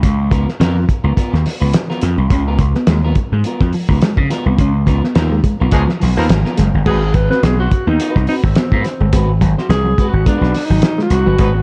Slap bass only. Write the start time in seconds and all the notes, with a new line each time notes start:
0.03 C#2
0.32 C#2
0.60 F2
1.04 C#2
1.17 muted slap bass stroke
1.33 D#2
1.61 C#2
2.03 F2
2.18 C2
2.31 C#2
2.59 C#2
2.87 D#2
3.32 G#2
3.61 F2
3.89 C#2
4.17 C#3
4.46 C2
4.58 C#2
4.87 C#2
5.15 D#2
5.61 B1
5.72 C#2
6.02 B1
6.17 D#2
6.29 G#1
6.58 F#1
6.74 G1
6.86 G#1
7.14 G#1
7.43 B1
7.87 D#2
8.16 C2
8.43 G#1
8.72 G#2
9.00 G1
9.13 G#1
9.41 G#1
9.69 C2
10.13 G#1
10.26 muted slap bass stroke
10.41 B1
10.70 G#1
11.10 C2
11.27 G1
11.39 G#1